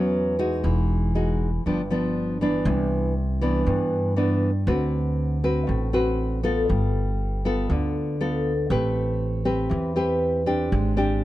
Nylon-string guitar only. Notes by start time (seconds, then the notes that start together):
Already playing: E3 F#3 B3 C#4
0.39 G#3 D#4 F#4
0.64 E3
1.15 G#3 D#4 F#4
1.66 G2 F3 B3 D4
1.91 F3 B3 D4
2.41 E3 B3 D4
2.67 C3
3.41 E3 B3 D4
3.66 G2
4.16 E3 B3 D4
4.67 D3 C4 F#4 B4
5.44 C4 F#4 B4
5.67 A2
5.93 C4 F#4 B4
6.43 B3 F4 A4
6.69 G3
7.45 B3 F4 A4
7.71 D3
8.21 B3 F4 A4
8.70 A3 C4 G4 B4
9.45 C4 G4 B4
9.69 E3
9.96 C4 G4 B4
10.46 C4 D4 G4
10.73 G#3
10.97 C4 D4 G4